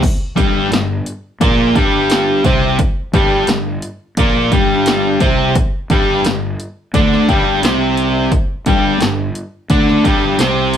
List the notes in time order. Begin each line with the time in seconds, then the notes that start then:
0.03 kick, closed hi-hat, splash
0.36 G1 G2 G3, kick, closed hi-hat
0.71 G1 G2, snare, closed hi-hat
1.06 closed hi-hat
1.41 A#1 A#2 A#3, kick, closed hi-hat
1.75 G1 G2 G3, kick, closed hi-hat
2.10 snare, closed hi-hat
2.44 C2 C3 C4, kick, closed hi-hat
2.79 kick, closed hi-hat
3.14 G1 G2 G3, kick, closed hi-hat
3.47 G1 G2, snare, closed hi-hat
3.82 closed hi-hat
4.17 A#1 A#2 A#3, kick, closed hi-hat
4.52 G1 G2 G3, kick, closed hi-hat
4.86 snare, closed hi-hat
5.20 C2 C3 C4, kick, closed hi-hat
5.55 kick, closed hi-hat
5.90 G1 G2 G3, kick, closed hi-hat
6.25 G1 G2, snare, closed hi-hat
6.60 closed hi-hat
6.94 D2 D3 D4, kick, closed hi-hat
7.13 snare
7.28 G1 G2 G3, kick, closed hi-hat
7.63 C2 C3 C4, snare, closed hi-hat
7.97 closed hi-hat
8.32 kick, closed hi-hat
8.66 G1 G2 G3, kick, closed hi-hat
9.00 G1 G2, snare, closed hi-hat
9.35 closed hi-hat
9.70 D2 D3 D4, kick, closed hi-hat
9.89 snare
10.04 G1 G2 G3, kick, closed hi-hat
10.39 C2 C3 C4, snare, closed hi-hat
10.74 closed hi-hat